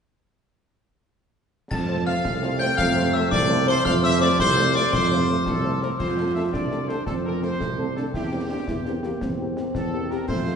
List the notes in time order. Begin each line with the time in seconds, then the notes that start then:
1.71 F2 C3 A3 A5 A6, concert bass drum, snare, crash
1.89 A3 F4 C5
2.06 A3 F4 C5 F5 F6, snare
2.25 C2, concert bass drum, snare
2.43 A3 F4 C5, snare
2.59 A3 F4 C5 G5 G6, snare
2.77 F2 F5 F6, concert bass drum, snare
2.95 A3 F4 C5
3.13 A3 F4 C5 E5 E6
3.31 C2 D5 D6, concert bass drum, snare
3.49 A3 F4 C5
3.67 A3 F4 C5 C6, snare
3.85 F2 F5 F6, concert bass drum, snare
4.03 A3 F4 C5 E5 E6
4.20 A3 F4 C5 D5 D6, snare
4.39 C2 C5 C6, concert bass drum, snare
4.57 A3 F4 C5, snare
4.75 A3 F4 C5 D5 D6, snare
4.93 F2 C5 C6, concert bass drum, snare
5.11 A3 F4 C5
5.28 A3 F4 C5
5.46 C2 A4, concert bass drum, snare
5.64 A3 F4 C5
5.81 A3 F4 A#4 C5, snare
5.99 F2 F4 C5, concert bass drum, snare, crash
6.17 A3 C4 A4
6.35 A3 C4 A4 E5
6.52 C2 D4 D5, concert bass drum, snare
6.71 A3 C4 A4, snare
6.88 A3 C4 A4 C5, snare
7.06 F2 C4 A4, concert bass drum, snare
7.25 A3 C4 A4 A#4
7.42 A3 C4 A4 C5, snare
7.60 C2 A3, concert bass drum, snare
7.78 A3 C4 A4
7.96 A3 C4 D4 A4, snare
8.14 E2 E4 G4, concert bass drum, snare
8.32 A#3 C4 G4
8.50 A#3 C4 D4 G4
8.68 E2 E4, concert bass drum, snare
8.85 A#3 C4 G4, snare
9.03 A#3 C4 G4, snare
9.21 E2 C4, concert bass drum, snare
9.39 A#3 C4 G4
9.57 A#3 C4 G4, snare
9.74 E2 A4, concert bass drum, snare
9.92 A#3 C4 G4
10.10 A#3 C4 G4 A#4, snare
10.28 F2 A3 C5, concert bass drum, snare, crash
10.46 A3 C4 F4